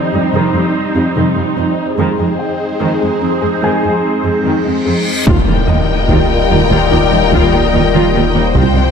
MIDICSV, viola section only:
0, 0, Header, 1, 2, 480
1, 0, Start_track
1, 0, Tempo, 821918
1, 1156, Time_signature, 4, 2, 24, 8
1, 5203, End_track
2, 0, Start_track
2, 0, Title_t, "Viola section"
2, 0, Program_c, 0, 48
2, 0, Note_on_c, 0, 63, 45
2, 79, Note_on_c, 0, 55, 31
2, 126, Note_off_c, 0, 55, 0
2, 202, Note_on_c, 0, 51, 38
2, 310, Note_off_c, 0, 51, 0
2, 322, Note_on_c, 0, 55, 32
2, 368, Note_off_c, 0, 55, 0
2, 557, Note_on_c, 0, 55, 30
2, 603, Note_off_c, 0, 55, 0
2, 675, Note_on_c, 0, 51, 39
2, 787, Note_off_c, 0, 51, 0
2, 793, Note_on_c, 0, 55, 30
2, 840, Note_off_c, 0, 55, 0
2, 911, Note_on_c, 0, 60, 31
2, 958, Note_off_c, 0, 60, 0
2, 1130, Note_off_c, 0, 63, 0
2, 1158, Note_on_c, 0, 51, 37
2, 1158, Note_on_c, 0, 68, 35
2, 1269, Note_off_c, 0, 51, 0
2, 1273, Note_on_c, 0, 56, 27
2, 1319, Note_off_c, 0, 56, 0
2, 1635, Note_on_c, 0, 51, 43
2, 1747, Note_off_c, 0, 51, 0
2, 1756, Note_on_c, 0, 56, 24
2, 1803, Note_off_c, 0, 56, 0
2, 1875, Note_on_c, 0, 60, 30
2, 1922, Note_off_c, 0, 60, 0
2, 1994, Note_on_c, 0, 56, 28
2, 2040, Note_off_c, 0, 56, 0
2, 2115, Note_on_c, 0, 51, 33
2, 2227, Note_off_c, 0, 51, 0
2, 2234, Note_on_c, 0, 56, 29
2, 2281, Note_off_c, 0, 56, 0
2, 2477, Note_on_c, 0, 56, 23
2, 2524, Note_off_c, 0, 56, 0
2, 2600, Note_on_c, 0, 51, 31
2, 2710, Note_off_c, 0, 51, 0
2, 2720, Note_on_c, 0, 56, 30
2, 2766, Note_off_c, 0, 56, 0
2, 2840, Note_on_c, 0, 60, 27
2, 2886, Note_off_c, 0, 60, 0
2, 2960, Note_off_c, 0, 68, 0
2, 3081, Note_on_c, 0, 65, 49
2, 3190, Note_off_c, 0, 65, 0
2, 3200, Note_on_c, 0, 65, 33
2, 3247, Note_off_c, 0, 65, 0
2, 3319, Note_on_c, 0, 63, 29
2, 3365, Note_off_c, 0, 63, 0
2, 3556, Note_on_c, 0, 65, 46
2, 3667, Note_off_c, 0, 65, 0
2, 3800, Note_on_c, 0, 63, 39
2, 3846, Note_off_c, 0, 63, 0
2, 3917, Note_on_c, 0, 65, 54
2, 4028, Note_off_c, 0, 65, 0
2, 4038, Note_on_c, 0, 65, 38
2, 4085, Note_off_c, 0, 65, 0
2, 4162, Note_on_c, 0, 63, 42
2, 4209, Note_off_c, 0, 63, 0
2, 4282, Note_on_c, 0, 65, 66
2, 4388, Note_off_c, 0, 65, 0
2, 4395, Note_on_c, 0, 65, 34
2, 4442, Note_off_c, 0, 65, 0
2, 4516, Note_on_c, 0, 63, 44
2, 4563, Note_off_c, 0, 63, 0
2, 4635, Note_on_c, 0, 65, 63
2, 4747, Note_off_c, 0, 65, 0
2, 4757, Note_on_c, 0, 65, 47
2, 4804, Note_off_c, 0, 65, 0
2, 4878, Note_on_c, 0, 63, 52
2, 4924, Note_off_c, 0, 63, 0
2, 4995, Note_on_c, 0, 65, 52
2, 5107, Note_off_c, 0, 65, 0
2, 5116, Note_on_c, 0, 65, 40
2, 5163, Note_off_c, 0, 65, 0
2, 5203, End_track
0, 0, End_of_file